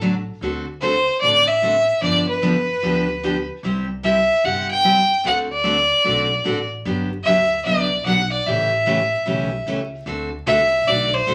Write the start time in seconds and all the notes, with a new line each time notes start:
Already playing: A1
0.01 D3 F#3 A3 D4 F#4
0.41 D2 D3 A3 C4 F#4 A4
0.81 D3 A3 C4 F#4 A4 C5
1.21 A1 D3 A3 C4 F#4 A4 D5
1.48 E5
1.62 D3 A3 C4 F#4 A4
2.01 G1 D3 F3 B3 D4 G4 D5
2.29 B4
2.42 D3 F3 B3 D4 G4
2.82 D2 D3 F3 B3 D4 G4
3.23 D3 F3 B3 D4 G4
3.63 C2 C3 G3 C4 E4 G4
4.03 C3 G3 C4 E4 G4 E5
4.44 G1 C3 G3 C4 E4 G4 F#5
4.71 G5
4.84 C3 G3 C4 E4 G4
5.24 D2 D3 A3 C4 F#4 A4 F#5
5.52 D5
5.64 D3 A3 C4 F#4 A4
6.04 B1 D3 A3 C4 F#4 A4
6.44 A1 D3 A3 C4 F#4 A4
6.85 G1 D3 F#3 B3 D4 G4
7.24 D2 D3 F#3 B3 D4 G4 E5
7.65 C2 D3 F#3 B3 D4 G4 D5
8.06 B1 D3 F#3 B3 D4 G4 F#5
8.32 D5
8.46 A1 C#3 E3 A3 C#4 G4 E5
8.86 C#3 E3 A3 C#4 G4
9.26 B1 C#3 E3 A3 C#4 G4
9.66 C#2 C#3 E3 A3 C#4 G4
10.06 D2 D3 A3 C4 F#4 A4
10.46 C2 D3 A3 C4 F#4 A4 E5
10.87 B1 D3 A3 C4 F#4 A4 D5
11.14 C5
11.27 A1 D3 A3 C4 F#4 A4